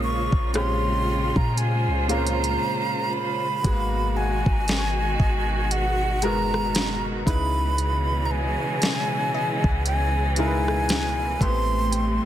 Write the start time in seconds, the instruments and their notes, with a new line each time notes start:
Already playing: 808-style bass A#1, grand piano A#2 G#3 C4 C#4 A#4, string section C#3 G#3 A#3 F4
0.04 flute C#6
0.32 808-style bass A#1, kick
0.54 grand piano A#2 G#3 C4 C#4 G4, flute C6, cross-stick, closed hi-hat
1.06 string section C5
1.36 808-style bass A#2, flute A#5, kick
1.57 flute G#5, closed hi-hat
1.87 808-style bass C#2
2.08 grand piano A#2 G#3 C4 C#4 A#4, synth pluck F5, flute A#5, closed hi-hat
2.18 grand piano C5
2.27 closed hi-hat
2.44 closed hi-hat
3.13 flute B5
3.63 808-style bass G#1, grand piano G#2 G#3 B3 F#4 G#4, string section B2 D#3 G#3 F#4, kick, closed hi-hat
3.73 grand piano A#3
4.17 synth pluck F#5, flute G#5
4.46 808-style bass G#1, kick
4.52 synth pluck A#5
4.68 snare, closed hi-hat
4.78 synth pluck C#6
5.20 808-style bass G#1, synth pluck D#5, kick
5.71 flute F#5, closed hi-hat
6.22 808-style bass F#1, grand piano G#2 G#3 B3 F#4 A#4, flute A#5, closed hi-hat
6.54 cross-stick
6.75 snare, closed hi-hat
7.26 808-style bass C#2, grand piano C#3 G#3 D#4 E4 B4, string section C#3 E3 G#3, flute B5, kick, closed hi-hat
7.78 closed hi-hat
8.25 flute A#5
8.31 flute G#5
8.82 snare, closed hi-hat
9.34 synth pluck D#5
9.64 808-style bass C#2, kick
9.69 synth pluck F#5
9.86 flute G#5, closed hi-hat
10.36 grand piano C#3 G#3 D#4 E4 A#4, flute G#5, closed hi-hat
10.47 grand piano B4
10.68 cross-stick
10.89 snare, closed hi-hat
11.41 808-style bass A1, grand piano A2 A3 B3 G4, string section G3 A3, flute C6, kick, closed hi-hat
11.48 grand piano C4
11.92 synth pluck G5, closed hi-hat